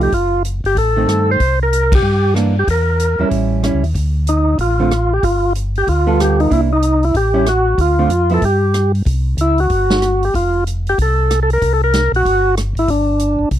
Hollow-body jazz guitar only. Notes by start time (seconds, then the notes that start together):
Already playing: G4
0.96 D#3 A3 C4
2.34 E3 A#3 D4
3.19 G3 C#4 E4
3.63 G3 C#4 E4
4.79 D3 A3 C4 F4
6.07 G3 B3 F4 A4
6.50 A#3 D4 E4
7.34 G3 C#4 E4
7.99 D3 A3 C4 F4
8.30 F3 B3 E4